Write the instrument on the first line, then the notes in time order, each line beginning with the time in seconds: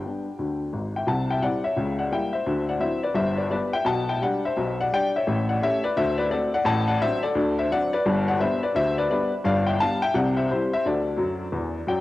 upright piano
Already playing: G4 G5
0.06 G3 B3 D4
0.39 D2 D3
0.73 G#1 G#2
0.96 E5 G5
1.07 C2 C3 F#5 A5
1.31 E5 G5
1.41 G3 C4 E4 D5 F#5
1.64 C#5 E5
1.76 C#2 C#3
1.99 D5 F#5
2.11 G3 A#3 E4 E5 G5
2.33 C5 E5
2.46 D2 D3
2.69 D5 F#5
2.80 F#3 C4 E4 C5 E5
3.03 B4 D5
3.14 G1 G2 C5 E5
3.37 B4 D5
3.50 G3 B3 G4 B4 D5
3.73 E5 G5
3.85 B1 B2 F#5 A5
4.09 E5 G5
4.21 G3 D4 G4 D5 F#5
4.45 C5 E5
4.56 B1 B2
4.80 D5 F#5
4.92 G3 D4 G4 D5 G5
5.16 C#5 E5
5.27 A1 A2
5.49 D5 F#5
5.62 A3 C#4 G4 C#5 E5
5.84 B4 D5
5.96 D2 D3 C5 E5
6.18 B4 D5
6.30 A3 C4 F#4 A4 D5
6.54 D5 F#5
6.65 A1 A2 F#5 A5
6.88 D5 F#5
7.01 F#3 C4 D4 C5 E5
7.23 A4 D5
7.35 D2 D3
7.59 C5 E5
7.71 F#3 C4 D4 D5 F#5
7.93 B4 D5
8.06 G1 G2
8.28 D5 F#5
8.40 G3 B3 D4 C5 E5
8.63 B4 D5
8.75 D2 D3 C5 E5
8.98 B4 D5
9.10 G3 B3 D4 B4 D5
9.44 G1 G2 D5 F5
9.67 E5 G5
9.80 G3 B3 D4 F5 A5
10.02 E5 G5
10.14 C2 C3 D5 F#5
10.37 C5 E5
10.50 G3 C4 E4 G4 C5
10.73 C5 E5
10.85 D2 D3 A4 D5
11.17 F#2 F#3
11.52 E2 E3
11.87 F#2 F#3 D5 G5